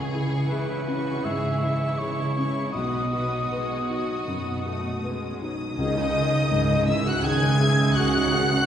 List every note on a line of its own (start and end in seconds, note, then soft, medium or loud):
0.00 1.21 C#2 soft
0.00 0.41 C#3 medium
0.00 0.49 G#4 medium
0.14 0.86 E3 soft
0.14 0.72 E4 soft
0.14 0.85 G#4 soft
0.14 0.85 C#6 soft
0.48 1.16 C#3 medium
0.48 0.87 E4 medium
0.48 1.10 G#4 soft
0.48 1.26 B4 medium
0.86 1.61 E3 soft
0.86 1.48 C#4 soft
0.86 1.24 F#4 soft
0.86 1.61 G#4 soft
0.86 1.61 C#6 soft
1.24 1.84 G#2 soft
1.24 1.90 C#3 soft
1.24 1.62 G#4 medium
1.24 2.00 E5 medium
1.61 2.35 E3 soft
1.61 2.73 E4 soft
1.61 2.21 E4 soft
1.61 2.35 G#4 soft
1.61 2.35 C#6 soft
1.99 2.65 C#3 soft
1.99 2.59 G#4 soft
1.99 2.72 C#5 medium
2.36 2.73 E3 soft
2.36 2.74 C#4 soft
2.36 2.73 G#4 soft
2.36 2.73 C#6 soft
2.73 4.23 B1 soft
2.73 3.41 B2 soft
2.73 3.10 F#3 soft
2.73 5.40 F#4 medium
2.73 3.10 B4 soft
2.73 4.98 D#5 medium
2.73 3.10 D#6 soft
3.11 3.42 F#3 soft
3.11 3.74 F#4 soft
3.11 3.42 B4 soft
3.11 3.87 D#6 soft
3.51 4.18 B2 soft
3.51 3.86 G#3 soft
3.51 4.12 B4 soft
3.89 4.27 F#3 soft
3.89 4.50 D#4 soft
3.89 4.63 D#6 soft
4.26 4.88 F#2 soft
4.26 4.93 B2 soft
4.26 4.64 B3 medium
4.64 5.02 A3 soft
4.64 5.26 F#4 soft
4.64 5.39 D#6 soft
5.03 5.69 B2 soft
5.03 5.41 G#3 medium
5.03 5.63 B4 soft
5.40 5.78 F#3 soft
5.40 5.78 D#4 soft
5.40 5.76 D#6 soft
5.77 6.42 C#2 medium
5.77 8.64 C#2 medium
5.77 6.42 C#3 medium
5.77 5.95 D#3 medium
5.77 8.63 G#3 medium
5.77 8.63 C#4 medium
5.77 6.90 D#4 medium
5.77 5.95 G#4 medium
5.77 6.84 D#5 medium
5.77 6.83 D#6 medium
5.97 6.15 G#3 soft
5.97 6.15 D#4 soft
6.15 6.33 D#3 medium
6.15 6.33 G#4 soft
6.33 6.51 G#3 soft
6.33 6.51 D#4 soft
6.51 7.15 C#2 medium
6.51 7.67 G#2 soft
6.51 7.15 C#3 medium
6.51 6.68 D#3 soft
6.51 6.68 G#4 soft
6.70 6.88 G#3 soft
6.70 6.88 D#4 soft
6.87 7.06 D#3 soft
6.87 7.06 E4 medium
6.87 7.06 G#4 soft
6.87 7.06 E5 medium
6.87 7.05 E6 medium
7.06 7.24 G#3 medium
7.06 7.24 D#4 medium
7.06 7.26 F#4 medium
7.06 7.23 F#5 medium
7.06 7.24 F#5 medium
7.06 7.24 F#6 medium
7.23 7.87 C#2 medium
7.23 7.87 C#3 medium
7.23 8.63 D#3 soft
7.23 7.41 D#3 medium
7.23 7.98 G#4 medium
7.23 7.41 G#4 medium
7.23 8.64 G#4 soft
7.23 7.61 G#5 medium
7.23 7.96 G#5 medium
7.23 7.96 G#6 medium
7.43 7.61 G#3 soft
7.43 7.61 D#4 soft
7.59 7.78 D#3 medium
7.59 7.79 G#4 medium
7.59 7.98 E5 medium
7.79 7.96 G#3 medium
7.79 7.96 D#4 medium
7.95 8.59 C#2 medium
7.95 8.59 C#3 medium
7.95 8.13 D#3 medium
7.95 8.66 F#4 medium
7.95 8.13 G#4 medium
7.95 8.66 D#5 medium
7.95 8.66 F#5 medium
7.95 8.66 F#6 medium
8.15 8.32 G#3 medium
8.15 8.32 D#4 medium
8.33 8.50 D#3 medium
8.33 8.50 G#4 medium
8.51 8.66 G#3 medium
8.51 8.66 D#4 medium